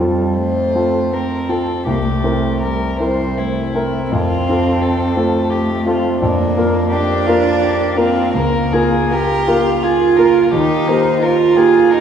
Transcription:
Already playing: grand piano F2
0.00 cello G3, grand piano C4 F4 A4
0.38 cello A3, violin C5
0.75 grand piano C4 F4 A4
1.13 cello C4, violin A#4
1.49 grand piano C4 F4 A4, violin A4
1.86 grand piano C2, cello A#3, violin G4
2.06 cello A3
2.24 grand piano C4 E4 A#4
2.61 cello G3, violin A#4
3.00 grand piano C4 E4 A#4, violin C5
3.38 cello A3, violin E4
3.74 grand piano C4 E4 A#4
4.12 grand piano F2, cello C4, violin F4
4.49 grand piano C4 F4 A4
4.82 violin A4
5.15 cello A3, grand piano C4 F4 A4
5.50 violin G4
5.85 grand piano C4 F4 A4, violin F4
6.21 grand piano F2, cello A#3, violin D4
6.57 grand piano A#3 F4 A#4
6.91 cello D4, violin G4
7.26 grand piano A#3 F4 A#4, violin F4
7.62 violin G4
7.97 grand piano A#3 F4 A#4, cello C4, violin F4
8.34 grand piano C#2, cello A#3, violin A#4
8.73 grand piano A#3 F4 A#4, violin G#4
9.12 cello G4, violin A#4
9.48 grand piano A#3 F4 A#4, violin F4
9.83 cello F4, violin G#4
10.17 grand piano A#3 F4 A#4, violin A#4
10.51 grand piano D#2, cello D#4, violin G4
10.88 grand piano A#3 G4 A#4, violin C5
11.21 cello F4, violin A#4
11.56 grand piano A#3 G4 A#4, violin G#4
11.91 cello D#4, violin A#4

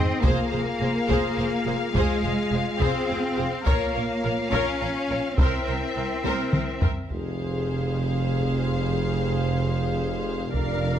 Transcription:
Already playing: cello section C4, french horn section D#4 G#4, violin section D#5
0.22 double bass section F1, cello section A#3, french horn section F4 G#4, viola section G#4, violin section C5 F5, taiko
0.51 double bass section F1, viola section G#4, violin section C5
0.79 double bass section F1, viola section G#4, violin section C5
1.09 double bass section F1, viola section G#4, violin section C5, taiko
1.37 double bass section F1, viola section G#4, violin section C5
1.66 double bass section F1, viola section G#4, violin section C5
1.94 double bass section F1, cello section G#3, viola section G#4, violin section C5, taiko
2.23 double bass section F1, viola section G#4, violin section C5
2.51 double bass section F1, viola section G#4, violin section C5
2.80 double bass section F1, cello section C4, viola section G#4, violin section C5, taiko
3.09 double bass section F1, viola section G#4, violin section C5
3.37 double bass section F1, viola section G#4, violin section C5
3.66 double bass section A#1, cello section A#3, french horn section F4 C#5, viola section A#4, violin section C#5 F5, taiko
3.95 double bass section A#1, viola section A#4, violin section C#5
4.24 double bass section A#1, viola section A#4, violin section C#5
4.53 double bass section A#1, cello section C#4, viola section A#4, violin section C#5, taiko
4.82 double bass section A#1, viola section A#4, violin section C#5
5.09 double bass section A#1, viola section A#4, violin section C#5
5.38 double bass section C2, cello section C4, french horn section E4 A#4, viola section A#4, violin section C5 E5, taiko
5.67 double bass section C2, viola section A#4, violin section C5
5.96 double bass section C2, viola section A#4, violin section C5
6.25 double bass section C2, viola section A#4, violin section C5, taiko high
6.52 double bass section C2, viola section A#4, violin section C5, taiko mid
6.80 double bass section C2, viola section A#4, violin section C5, taiko low
7.09 tuba F1, double bass section F1, cello section F2, french horn section C4 G#4, viola section G#4, violin section C5 F5, taiko
8.40 taiko
10.54 tuba F1, double bass section F1, cello section F2, french horn section D4 A#4, viola section A#4, violin section D5 F5, taiko

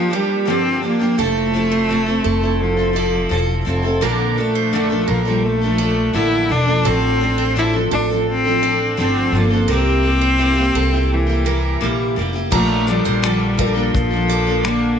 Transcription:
Already playing: cello F3, steel-string acoustic guitar D4 G4
0.10 steel-string acoustic guitar F3 A#3 D4 G4
0.15 cello G3
0.45 steel-string acoustic guitar G2 D3 F3 A#3 D4 G4
0.50 cello C4
0.81 steel-string acoustic guitar F3 A#3 D4 G4
0.87 cello A#3
0.99 steel-string acoustic guitar F3 A#3 D4 G4
1.18 upright bass F1, steel-string acoustic guitar F3 C4 E4 A4, cello A3
1.53 steel-string acoustic guitar F3 C4 E4 A4
1.72 steel-string acoustic guitar C5
1.89 steel-string acoustic guitar F3 C4 E4 A4
2.06 steel-string acoustic guitar C4 E4 A4
2.24 upright bass F1, steel-string acoustic guitar A4
2.41 steel-string acoustic guitar C4 E4 A4
2.62 cello F3
2.77 steel-string acoustic guitar C4 E4 A4
2.93 steel-string acoustic guitar F3 C4 E4 A4 D5
3.29 upright bass E1, steel-string acoustic guitar F3 C4 E4 A4
3.65 upright bass F1, steel-string acoustic guitar F3 C4 E4 A4
3.83 steel-string acoustic guitar C4 E4 A4
4.01 upright bass A#1, steel-string acoustic guitar A#2 D3 F3 A#3 D4 A4 A#4
4.36 steel-string acoustic guitar F3 D4 A4, cello A3
4.55 steel-string acoustic guitar C5
4.73 steel-string acoustic guitar A#2 D3 F3 A#3 D4 A4
4.90 steel-string acoustic guitar F3 A#3 D4 A4
5.08 upright bass A#1, cello F3, steel-string acoustic guitar A#4
5.25 steel-string acoustic guitar F3 A#3 D4 A4, cello G3
5.45 cello A3
5.61 steel-string acoustic guitar F3 A#3 D4 A4
5.78 steel-string acoustic guitar F3 D4 A4 D5
6.13 upright bass A1, steel-string acoustic guitar D3 F3 A#3 D4 A4, cello E4
6.49 upright bass E1, steel-string acoustic guitar F3 A#3 D4 A4, cello D4
6.66 steel-string acoustic guitar F3 A#3 D4 A4
6.83 upright bass A1, steel-string acoustic guitar A2 D3 F3 C4 D4 A4, cello C4
7.20 steel-string acoustic guitar F3 C4 D4 A4
7.38 steel-string acoustic guitar C5
7.55 steel-string acoustic guitar A2 D3 F3 C4 D4 A4, cello E4
7.74 steel-string acoustic guitar F3 C4 D4 A4
7.91 upright bass A1, cello D4, steel-string acoustic guitar A4
8.09 steel-string acoustic guitar F3 C4 D4 A4
8.30 cello C4
8.44 steel-string acoustic guitar F3 C4 D4 A4
8.62 steel-string acoustic guitar F3 C4 D4 A4 D5
8.97 upright bass G1, steel-string acoustic guitar A2 D3 F3 C4 D4 A4
9.01 cello C4
9.32 upright bass G1, steel-string acoustic guitar F3 C4 D4
9.36 cello A#3, steel-string acoustic guitar A4
9.50 steel-string acoustic guitar F3 C4 D4 A4
9.68 upright bass C2, steel-string acoustic guitar C3 G3 A#3 E4 G4 A#4, cello C4
10.03 steel-string acoustic guitar G3 A#3 E4 G4
10.21 steel-string acoustic guitar C5
10.38 steel-string acoustic guitar C3 G3 A#3 E4 G4
10.55 steel-string acoustic guitar A#3 E4 G4
10.75 upright bass C2, steel-string acoustic guitar A4
10.91 steel-string acoustic guitar A#3 E4 G4
11.14 cello E3
11.27 steel-string acoustic guitar A#3 E4 G4
11.45 steel-string acoustic guitar G3 A#3 E4 G4 A#4
11.81 upright bass A#1, steel-string acoustic guitar C3 G3 A#3 E4 G4
12.16 upright bass F1, steel-string acoustic guitar G3 A#3 E4 G4
12.33 steel-string acoustic guitar A#3 E4 G4
12.51 upright bass A#1, steel-string acoustic guitar A#2 D3 F3 D4 A#5, cello A3, upright piano A#3 F4 A4 D5, kick, crash
12.87 steel-string acoustic guitar F3 A#3 D4 A4, cello G3, upright piano A#3 F4 A4 D5, shaker
13.05 upright bass A#1, steel-string acoustic guitar C5, shaker
13.22 steel-string acoustic guitar A#2 D3 F3 A#3 D4 A4, finger snap, shaker
13.57 steel-string acoustic guitar F3 A#3 D4 A4 A#4, upright piano A#3 F4 A4 D5, kick, shaker
13.74 steel-string acoustic guitar F3 A#3 D4 A4
13.95 upright bass A#1, cello F3, kick, shaker
14.11 steel-string acoustic guitar F3 A#3 D4 A4
14.28 steel-string acoustic guitar F3 A#3 D4 A4 D5, shaker
14.46 steel-string acoustic guitar F3 A#3 D4 A4
14.63 steel-string acoustic guitar A#2 D3 F3 A#3 D4 A4, cello A#3, finger snap, shaker

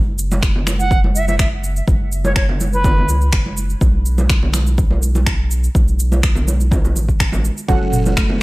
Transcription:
Already playing: analog synth bass F#1
0.19 shaker
0.31 high conga, shaker
0.43 finger snap, kick, shaker
0.56 low conga
0.67 finger snap, high conga, shaker
0.79 flute F#5, shaker
0.91 kick, shaker
1.04 high conga
1.15 flute E5, shaker
1.28 flute E5, high conga, shaker
1.39 flute E5, finger snap, kick, shaker
1.64 shaker
1.76 shaker
1.88 analog synth bass F#1, kick, high conga, shaker
2.12 shaker
2.25 flute C#5, high conga, shaker
2.36 flute C#5, finger snap, kick, shaker
2.49 low conga
2.60 high conga, shaker
2.73 flute B4, shaker
2.84 kick, high conga, low conga, shaker
2.98 low conga
3.09 analog synth bass C#2, high conga, shaker
3.21 shaker
3.33 analog synth bass F#1, finger snap, kick, shaker
3.46 high conga
3.57 shaker
3.70 shaker
3.81 analog synth bass B1, kick, high conga, shaker
4.06 shaker
4.18 high conga, shaker
4.30 finger snap, kick, shaker
4.43 low conga
4.54 finger snap, high conga, shaker
4.67 shaker
4.78 kick, shaker
4.91 high conga
5.03 shaker
5.15 high conga, shaker
5.26 finger snap, kick, shaker
5.51 shaker
5.64 shaker
5.75 analog synth bass B1, kick, high conga, shaker
5.88 shaker
6.00 shaker
6.12 high conga, shaker
6.23 finger snap, kick, shaker
6.36 low conga, shaker
6.48 high conga, shaker
6.60 shaker
6.71 kick, high conga, low conga, shaker
6.85 low conga, shaker
6.96 analog synth bass A1, high conga, shaker
7.09 kick, shaker
7.20 finger snap, kick, shaker
7.32 high conga, low conga, shaker
7.45 shaker
7.58 shaker
7.68 analog synth bass F#1, kalimba F#3, synth stab C#4 F#4 A4 F#5, kick, high conga, shaker
7.93 mid tom, shaker
8.06 high conga, shaker
8.17 kalimba A3, finger snap, kick, shaker
8.30 low conga

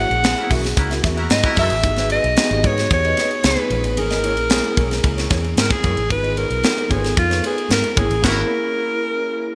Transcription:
Already playing: tine electric piano A#3 C#4 E4 G#4
0.00 alto saxophone F#5
0.10 fingered electric bass A#1, ride, high conga
0.23 tine electric piano A#3 C#4 E4 G#4, snare, ride, muted conga
0.36 horn section E4 F#4 A#4, muted clean electric guitar stroke, ride
0.49 fingered electric bass B1, clean electric guitar F#4 A#4 E5, kick, open hi-hat, ride, muted conga, high conga, low conga
0.64 muted clean electric guitar stroke, snare, ride
0.77 fingered electric bass C#2, horn section E4 F#4 A#4, muted clean electric guitar stroke, kick, hi-hat pedal, ride
0.90 clean electric guitar F#4 A#4 E5, snare, ride
1.03 fingered electric bass E2, clean electric guitar F#4 A#4 E5, kick, snare, ride, high conga
1.17 horn section E4 F#4 A#4, muted clean electric guitar stroke, ride
1.29 fingered electric bass G#2, alto saxophone D#5, snare, ride, muted conga, high conga
1.43 horn section E4 F#4 A#4, muted clean electric guitar stroke, kick, ride, high conga
1.56 fingered electric bass F#2, clean electric guitar F#4 A#4 E5, alto saxophone E5, kick, open hi-hat, ride, muted conga, high conga, low conga
1.70 fingered electric bass A1, muted clean electric guitar stroke, ride
1.83 fingered electric bass G#1, tine electric piano B3 D#4 F#4 G4, muted clean electric guitar stroke, kick, hi-hat pedal, ride, muted conga, low conga
1.90 tine electric piano G#4
1.96 clean electric guitar G#4 B4 E5, snare, ride
2.10 clean electric guitar G#4 B4 D#5, alto saxophone D#5, ride
2.24 fingered electric bass B1, muted clean electric guitar stroke, ride
2.36 tine electric piano B3 D#4 F#4 G4, snare, ride, muted conga
2.44 tine electric piano G#4
2.51 fingered electric bass G#1, ride
2.63 fingered electric bass G#2, clean electric guitar G#4 B4 D#5, alto saxophone C#5, kick, ride, muted conga, high conga, low conga
2.77 muted clean electric guitar stroke, snare, ride
2.90 fingered electric bass E2, alto saxophone C#5, muted clean electric guitar stroke, kick, ride, muted conga
3.04 clean electric guitar G#4 B4 D#5, ride
3.17 clean electric guitar G#4 B4 D#5, snare, ride, muted conga, high conga
3.31 muted clean electric guitar stroke, ride
3.43 fingered electric bass C#2, tine electric piano B3 D#4 F4 G#4, alto saxophone B4, snare, ride, high conga
3.57 muted clean electric guitar stroke, ride, high conga
3.70 fingered electric bass A#1, clean electric guitar F4 B4 C#5, ride, muted conga, high conga, low conga
3.84 fingered electric bass A1, muted clean electric guitar stroke, ride
3.97 fingered electric bass G#1, tine electric piano A#3 C#4 E4 G#4, alto saxophone A#4, muted clean electric guitar stroke, ride, muted conga, low conga
4.10 clean electric guitar E4 A#4 D#5, snare, ride
4.24 clean electric guitar E4 A#4 C#5, ride
4.37 fingered electric bass A#1, muted clean electric guitar stroke, ride
4.50 tine electric piano G#3 C#4 E4 G#4, snare, ride, muted conga
4.56 tine electric piano A#3
4.64 muted clean electric guitar stroke, ride
4.77 fingered electric bass B1, clean electric guitar E4 A#4 C#5, kick, ride, high conga, low conga
4.91 muted clean electric guitar stroke, snare, ride
5.04 fingered electric bass C#2, muted clean electric guitar stroke, kick, ride, muted conga
5.17 clean electric guitar E4 A#4 C#5, snare, ride
5.30 fingered electric bass E2, clean electric guitar E4 A#4 C#5, kick, snare, ride, high conga
5.44 muted clean electric guitar stroke, ride
5.57 fingered electric bass G#2, alto saxophone A#4, snare, ride, high conga
5.70 alto saxophone G#4, muted clean electric guitar stroke, kick, ride, high conga
5.83 fingered electric bass F#2, clean electric guitar E4 A#4 C#5, kick, ride, muted conga, high conga, low conga
5.97 fingered electric bass A1, muted clean electric guitar stroke, ride
6.10 fingered electric bass G#1, tine electric piano B3 D#4 F4 F#4, alto saxophone B4, muted clean electric guitar stroke, kick, ride, low conga
6.17 tine electric piano G#4
6.23 clean electric guitar F4 B4 D#5, ride
6.37 clean electric guitar F4 B4 C#5, alto saxophone A#4, ride, muted conga
6.50 fingered electric bass B1, muted clean electric guitar stroke, ride
6.63 tine electric piano B3 D#4 F4 A4, snare, ride, muted conga
6.71 tine electric piano A#4
6.77 muted clean electric guitar stroke, ride
6.90 fingered electric bass G#1, clean electric guitar F4 B4 C#5, alto saxophone G#4, kick, ride, muted conga, high conga, low conga
7.03 muted clean electric guitar stroke, snare, ride
7.16 fingered electric bass F2, alto saxophone F4, muted clean electric guitar stroke, kick, ride, muted conga
7.30 clean electric guitar F4 B4 C#5, snare, ride
7.43 clean electric guitar F4 B4 C#5, alto saxophone G#4, ride, muted conga, high conga
7.57 muted clean electric guitar stroke, ride
7.69 fingered electric bass G#2, alto saxophone A#4, snare, ride, muted conga, high conga
7.82 muted clean electric guitar stroke, ride, high conga
7.96 fingered electric bass G#1, tine electric piano A#3 C#4 E4 G#4, clean electric guitar E4 A#4 C#5, alto saxophone G#4, kick, ride, muted conga, high conga, low conga
8.10 fingered electric bass A1, muted clean electric guitar stroke, ride
8.22 fingered electric bass G#1, tine electric piano A#3 C#4 E4, horn section E4 F#4 A#4, clean electric guitar E4 A#4, alto saxophone A#4, kick, snare, crash

